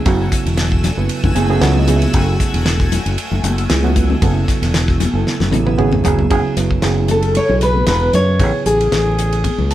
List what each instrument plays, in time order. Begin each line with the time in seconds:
Already playing: ambient pad A3 F#4 G#5 E6
0.05 fingered electric bass F#1, reed electric piano C#3 F#3 B3 E4 F#4, kick, ride
0.32 kick, hi-hat pedal, ride
0.46 fingered electric bass E1, ride
0.57 snare, ride
0.72 kick
0.84 snare, hi-hat pedal, ride, low conga
0.97 fingered electric bass F#1, reed electric piano C#3 F#3 B3 E4 B4
1.09 ride
1.23 fingered electric bass F#1, kick, low conga
1.35 fingered electric bass F#1, reed electric piano C#3 F#3 B3 E4 G#4 G#5, hi-hat pedal, ride, high conga
1.44 reed electric piano G#5
1.49 reed electric piano C#3 F#3 B3 E4 G#4
1.61 fingered electric bass C#2, reed electric piano C#3 F#3 B3 E4 A4 F#5, snare, ride
1.76 reed electric piano D#5, high conga
1.87 reed electric piano C#3 F#3 B3 E4 G#4, hi-hat pedal, ride, low conga
1.96 reed electric piano E5
2.02 ride, high conga
2.13 fingered electric bass F#1, kick, ride
2.40 kick, snare, hi-hat pedal, ride
2.54 fingered electric bass E1, ride
2.66 snare, ride
2.80 kick, snare
2.92 hi-hat pedal, ride, low conga
3.06 fingered electric bass F#1, ride
3.18 ride
3.31 fingered electric bass F#1, low conga
3.43 fingered electric bass F#1, hi-hat pedal, ride, high conga
3.58 ride
3.69 fingered electric bass C#2, reed electric piano C#3 F#3 B3 E4 G#4, snare, ride
3.83 reed electric piano C#3 F#3 B3 E4 F#4, high conga
3.96 kick, hi-hat pedal, ride
4.10 high conga
4.22 fingered electric bass F#1, reed electric piano C#3 F#3 B3 E4 A4, kick, ride
4.48 kick, snare, hi-hat pedal, ride
4.62 fingered electric bass E1, snare, ride
4.74 snare, ride
4.88 kick, snare
5.00 snare, hi-hat pedal, ride, high conga, low conga
5.13 fingered electric bass F#1, reed electric piano C#3 F#3 B3 E4 A4
5.27 snare
5.40 fingered electric bass F#1, snare, low conga
5.51 fingered electric bass A1, reed electric piano C#3 F#3 B3 E4 B4, hi-hat pedal, high tom, high conga
5.65 reed electric piano C#3 F#3 B3 E4 B4, high tom
5.78 fingered electric bass G#1, reed electric piano C#3 F#3 B3 E4 G#4, mid tom
5.92 mid tom, high conga
6.04 fingered electric bass F#1, reed electric piano C#3 F#3 B3 E4 G#4, floor tom, hi-hat pedal, low conga
6.19 floor tom, high conga
6.30 fingered electric bass F#1, reed electric piano C#3 F#3 B3 E4 G#4, kick, ride
6.45 muted fingered electric bass stroke
6.57 fingered electric bass F#1, reed electric piano C#3 F#3 B3 E4 B4, snare, hi-hat pedal, ride
6.71 kick
6.82 fingered electric bass F#1, reed electric piano C#3 F#3 B3 E4 G#4, snare, ride
7.08 flute A4, nylon-string guitar A4, hi-hat pedal, ride, low conga
7.22 ride
7.35 flute C#5, nylon-string guitar C#5, ride, high conga
7.49 fingered electric bass B1, reed electric piano C#3 F#3 B3 E4 G#4, low conga
7.61 flute B4, nylon-string guitar B4, snare, hi-hat pedal, ride
7.75 high conga
7.87 fingered electric bass E1, nylon-string guitar B4, flute B4, snare, ride
8.13 fingered electric bass F#2, nylon-string guitar C#5, flute C#5, hi-hat pedal, ride, low conga
8.39 fingered electric bass A1, reed electric piano C#3 F#3 B3 E4 G#4, kick, ride
8.53 muted fingered electric bass stroke
8.66 fingered electric bass A1, nylon-string guitar G#4, flute G#4, hi-hat pedal, ride
8.81 ride
8.92 fingered electric bass A1, snare, ride
9.18 hi-hat pedal, ride
9.32 ride
9.44 kick, ride, high conga
9.58 fingered electric bass C#2, high conga, low conga
9.70 reed electric piano A5, hi-hat pedal, ride